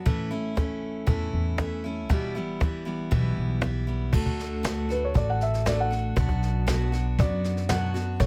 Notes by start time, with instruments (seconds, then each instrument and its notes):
0.05 upright bass A1, steel-string acoustic guitar A2 E3 A3 C#4 E4, cajon bass
0.31 steel-string acoustic guitar A3 C#4 E4
0.55 steel-string acoustic guitar E3 A3 C#4 E4, cajon bass, cajon slap
0.82 cajon slap
1.06 upright bass E2, steel-string acoustic guitar A2 E3 A3 C#4 E4, cajon bass
1.20 cajon slap
1.33 upright bass E2
1.46 cajon slap
1.58 steel-string acoustic guitar E3 A3 C#4 E4, cajon slap
1.84 steel-string acoustic guitar A3 C#4 E4
2.09 upright bass E1, steel-string acoustic guitar E2 B2 E3 G3 B3 E4, cajon bass, cajon slap
2.35 steel-string acoustic guitar E3 G3 B3 E4, cajon slap
2.60 steel-string acoustic guitar E3 G3 B3 E4, cajon bass, cajon slap
2.85 steel-string acoustic guitar E3 G3 B3 E4, cajon slap
3.00 cajon slap
3.11 upright bass B1, steel-string acoustic guitar E2 B2 E3 G3 B3 E4, cajon bass
3.25 cajon slap
3.37 upright bass B1
3.50 cajon slap
3.61 steel-string acoustic guitar E3 G3 B3 E4, cajon slap
3.87 steel-string acoustic guitar E3 G3 B3 E4, cajon slap
4.13 upright bass D2, steel-string acoustic guitar D3 A3 D4 F#4, cajon bass, kick, snare, crash
4.26 cajon bass
4.39 snare
4.63 steel-string acoustic guitar D3 A3 D4 F#4, snare, cajon slap
4.89 steel-string acoustic guitar A3 D4 F#4, felt piano B4, snare, cajon slap
5.03 felt piano C#5, cajon slap
5.14 upright bass A1, steel-string acoustic guitar D3 A3 D4 F#4, felt piano D5, cajon bass, kick, snare
5.30 felt piano F#5
5.41 felt piano E5, snare
5.54 snare
5.66 steel-string acoustic guitar D3 A3 D4 F#4, felt piano D5, cajon slap, snare
5.80 felt piano F#5
5.91 steel-string acoustic guitar A3 D4 F#4, snare
6.16 upright bass B1, steel-string acoustic guitar B2 F#3 B3 D4 F#4, cajon bass, kick, snare
6.29 cajon bass
6.43 snare
6.67 steel-string acoustic guitar B2 F#3 B3 D4 F#4, cajon slap, snare
6.92 steel-string acoustic guitar B3 D4 F#4, cajon slap, snare
7.06 cajon slap
7.19 upright bass F#2, steel-string acoustic guitar F#3 B3 D4 F#4, felt piano D5, kick, cajon bass, snare
7.44 snare
7.57 snare
7.69 steel-string acoustic guitar B2 F#3 B3 D4 F#4, felt piano F#5, snare, cajon slap
7.94 steel-string acoustic guitar B3 D4 F#4, snare
8.20 upright bass A1, steel-string acoustic guitar A2 E3 A3 C#4 E4, felt piano C#5, cajon bass, kick, snare